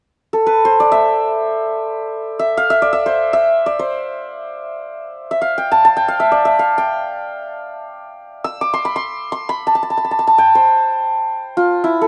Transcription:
0, 0, Header, 1, 2, 480
1, 0, Start_track
1, 0, Tempo, 500000
1, 11593, End_track
2, 0, Start_track
2, 0, Title_t, "Santur"
2, 0, Program_c, 0, 15
2, 317, Note_on_c, 0, 69, 52
2, 446, Note_on_c, 0, 71, 58
2, 624, Note_on_c, 0, 72, 63
2, 681, Note_off_c, 0, 71, 0
2, 768, Note_on_c, 0, 74, 63
2, 880, Note_on_c, 0, 76, 70
2, 2294, Note_off_c, 0, 76, 0
2, 2298, Note_on_c, 0, 76, 67
2, 2471, Note_on_c, 0, 77, 72
2, 2529, Note_off_c, 0, 76, 0
2, 2593, Note_on_c, 0, 76, 79
2, 2650, Note_off_c, 0, 77, 0
2, 2703, Note_off_c, 0, 74, 0
2, 2707, Note_on_c, 0, 74, 67
2, 2806, Note_off_c, 0, 76, 0
2, 2810, Note_on_c, 0, 76, 70
2, 2933, Note_off_c, 0, 72, 0
2, 2937, Note_on_c, 0, 72, 60
2, 3128, Note_off_c, 0, 69, 0
2, 3194, Note_off_c, 0, 76, 0
2, 3198, Note_on_c, 0, 76, 73
2, 3512, Note_off_c, 0, 74, 0
2, 3516, Note_on_c, 0, 74, 61
2, 3638, Note_off_c, 0, 72, 0
2, 3642, Note_on_c, 0, 72, 52
2, 5094, Note_off_c, 0, 76, 0
2, 5098, Note_on_c, 0, 76, 57
2, 5199, Note_on_c, 0, 77, 60
2, 5256, Note_off_c, 0, 76, 0
2, 5354, Note_on_c, 0, 79, 63
2, 5487, Note_on_c, 0, 81, 74
2, 5610, Note_off_c, 0, 81, 0
2, 5613, Note_on_c, 0, 81, 73
2, 5723, Note_off_c, 0, 79, 0
2, 5727, Note_on_c, 0, 79, 70
2, 5836, Note_off_c, 0, 77, 0
2, 5840, Note_on_c, 0, 77, 62
2, 5876, Note_off_c, 0, 74, 0
2, 5949, Note_on_c, 0, 76, 64
2, 6007, Note_off_c, 0, 77, 0
2, 6064, Note_on_c, 0, 74, 60
2, 6175, Note_off_c, 0, 72, 0
2, 6189, Note_off_c, 0, 76, 0
2, 6193, Note_on_c, 0, 76, 62
2, 6328, Note_on_c, 0, 77, 58
2, 6385, Note_off_c, 0, 76, 0
2, 6503, Note_off_c, 0, 79, 0
2, 6507, Note_on_c, 0, 79, 64
2, 7468, Note_off_c, 0, 81, 0
2, 8106, Note_on_c, 0, 88, 74
2, 8163, Note_off_c, 0, 77, 0
2, 8267, Note_on_c, 0, 86, 71
2, 8385, Note_on_c, 0, 84, 79
2, 8424, Note_off_c, 0, 74, 0
2, 8493, Note_off_c, 0, 79, 0
2, 8495, Note_on_c, 0, 83, 71
2, 8553, Note_off_c, 0, 84, 0
2, 8599, Note_on_c, 0, 84, 71
2, 8657, Note_off_c, 0, 83, 0
2, 8943, Note_off_c, 0, 84, 0
2, 8947, Note_on_c, 0, 84, 74
2, 9111, Note_on_c, 0, 83, 75
2, 9168, Note_off_c, 0, 84, 0
2, 9281, Note_on_c, 0, 81, 68
2, 9356, Note_off_c, 0, 81, 0
2, 9360, Note_on_c, 0, 81, 54
2, 9430, Note_off_c, 0, 81, 0
2, 9434, Note_on_c, 0, 81, 49
2, 9501, Note_off_c, 0, 81, 0
2, 9505, Note_on_c, 0, 81, 46
2, 9563, Note_off_c, 0, 88, 0
2, 9571, Note_off_c, 0, 81, 0
2, 9575, Note_on_c, 0, 81, 49
2, 9638, Note_off_c, 0, 81, 0
2, 9642, Note_on_c, 0, 81, 43
2, 9703, Note_off_c, 0, 81, 0
2, 9707, Note_on_c, 0, 81, 50
2, 9777, Note_off_c, 0, 81, 0
2, 9781, Note_on_c, 0, 81, 49
2, 9825, Note_off_c, 0, 86, 0
2, 9859, Note_off_c, 0, 81, 0
2, 9863, Note_on_c, 0, 81, 61
2, 9967, Note_on_c, 0, 79, 66
2, 10130, Note_on_c, 0, 72, 56
2, 10188, Note_off_c, 0, 83, 0
2, 11106, Note_on_c, 0, 65, 64
2, 11365, Note_on_c, 0, 64, 65
2, 11423, Note_off_c, 0, 65, 0
2, 11534, Note_on_c, 0, 69, 57
2, 11593, Note_off_c, 0, 64, 0
2, 11593, Note_off_c, 0, 69, 0
2, 11593, Note_off_c, 0, 72, 0
2, 11593, Note_off_c, 0, 79, 0
2, 11593, Note_off_c, 0, 81, 0
2, 11593, End_track
0, 0, End_of_file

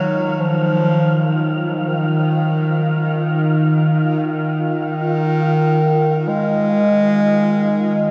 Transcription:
0, 0, Header, 1, 4, 480
1, 0, Start_track
1, 0, Tempo, 500000
1, 7785, End_track
2, 0, Start_track
2, 0, Title_t, "Synth texture"
2, 0, Program_c, 0, 99
2, 0, Note_on_c, 0, 65, 86
2, 0, Note_on_c, 0, 77, 86
2, 7785, Note_off_c, 0, 65, 0
2, 7785, Note_off_c, 0, 77, 0
2, 7785, End_track
3, 0, Start_track
3, 0, Title_t, "Bass clarinet"
3, 0, Program_c, 1, 71
3, 0, Note_on_c, 1, 54, 108
3, 383, Note_on_c, 1, 53, 110
3, 397, Note_off_c, 1, 54, 0
3, 1532, Note_off_c, 1, 53, 0
3, 1791, Note_on_c, 1, 51, 90
3, 3637, Note_off_c, 1, 51, 0
3, 4140, Note_on_c, 1, 51, 114
3, 6031, Note_on_c, 1, 56, 127
3, 6045, Note_off_c, 1, 51, 0
3, 7785, Note_off_c, 1, 56, 0
3, 7785, End_track
4, 0, Start_track
4, 0, Title_t, "Synth drone"
4, 0, Program_c, 2, 95
4, 0, Note_on_c, 2, 51, 71
4, 7785, Note_off_c, 2, 51, 0
4, 7785, End_track
0, 0, End_of_file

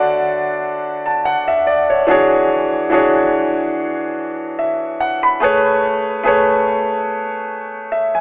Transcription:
0, 0, Header, 1, 2, 480
1, 0, Start_track
1, 0, Tempo, 833333
1, 1196, Time_signature, 4, 2, 24, 8
1, 4727, End_track
2, 0, Start_track
2, 0, Title_t, "Grand piano"
2, 0, Program_c, 0, 0
2, 0, Control_c, 0, 64, 127
2, 0, Note_on_c, 0, 50, 76
2, 0, Note_on_c, 0, 62, 74
2, 0, Note_on_c, 0, 66, 73
2, 0, Note_on_c, 0, 73, 90
2, 0, Note_on_c, 0, 74, 88
2, 0, Note_on_c, 0, 76, 66
2, 350, Note_off_c, 0, 50, 0
2, 354, Note_off_c, 0, 62, 0
2, 358, Note_off_c, 0, 66, 0
2, 362, Note_off_c, 0, 74, 0
2, 609, Note_on_c, 0, 81, 61
2, 713, Note_off_c, 0, 81, 0
2, 722, Note_on_c, 0, 78, 68
2, 843, Note_off_c, 0, 78, 0
2, 851, Note_off_c, 0, 76, 0
2, 851, Note_on_c, 0, 76, 69
2, 954, Note_off_c, 0, 76, 0
2, 961, Note_on_c, 0, 74, 64
2, 1082, Note_off_c, 0, 74, 0
2, 1093, Note_off_c, 0, 73, 0
2, 1093, Note_on_c, 0, 73, 58
2, 1191, Note_on_c, 0, 52, 85
2, 1197, Note_on_c, 0, 62, 77
2, 1203, Control_c, 0, 64, 0
2, 1203, Note_on_c, 0, 66, 71
2, 1207, Note_off_c, 0, 73, 0
2, 1209, Note_on_c, 0, 68, 76
2, 1216, Note_on_c, 0, 73, 88
2, 1321, Control_c, 0, 64, 127
2, 1493, Note_off_c, 0, 52, 0
2, 1495, Note_off_c, 0, 62, 0
2, 1498, Note_off_c, 0, 66, 0
2, 1502, Note_off_c, 0, 68, 0
2, 1505, Note_off_c, 0, 73, 0
2, 1669, Note_on_c, 0, 52, 77
2, 1676, Note_on_c, 0, 62, 71
2, 1682, Note_on_c, 0, 66, 73
2, 1687, Note_on_c, 0, 68, 70
2, 1693, Note_on_c, 0, 73, 84
2, 2270, Note_off_c, 0, 52, 0
2, 2274, Note_off_c, 0, 62, 0
2, 2277, Note_off_c, 0, 66, 0
2, 2279, Note_off_c, 0, 68, 0
2, 2282, Note_off_c, 0, 73, 0
2, 2642, Note_on_c, 0, 76, 63
2, 2868, Note_off_c, 0, 76, 0
2, 2883, Note_on_c, 0, 78, 64
2, 3003, Note_off_c, 0, 78, 0
2, 3013, Note_on_c, 0, 83, 64
2, 3111, Note_on_c, 0, 57, 78
2, 3119, Note_on_c, 0, 68, 73
2, 3123, Control_c, 0, 64, 0
2, 3127, Note_on_c, 0, 71, 78
2, 3134, Note_on_c, 0, 73, 89
2, 3226, Control_c, 0, 64, 127
2, 3238, Note_off_c, 0, 83, 0
2, 3413, Note_off_c, 0, 57, 0
2, 3417, Note_off_c, 0, 68, 0
2, 3421, Note_off_c, 0, 71, 0
2, 3424, Note_off_c, 0, 73, 0
2, 3591, Note_on_c, 0, 57, 78
2, 3598, Note_on_c, 0, 68, 74
2, 3605, Note_on_c, 0, 71, 70
2, 3614, Note_on_c, 0, 73, 83
2, 4191, Note_off_c, 0, 57, 0
2, 4195, Note_off_c, 0, 68, 0
2, 4198, Note_off_c, 0, 71, 0
2, 4203, Note_off_c, 0, 73, 0
2, 4561, Note_on_c, 0, 76, 61
2, 4682, Note_off_c, 0, 76, 0
2, 4693, Note_on_c, 0, 80, 67
2, 4727, Note_off_c, 0, 80, 0
2, 4727, End_track
0, 0, End_of_file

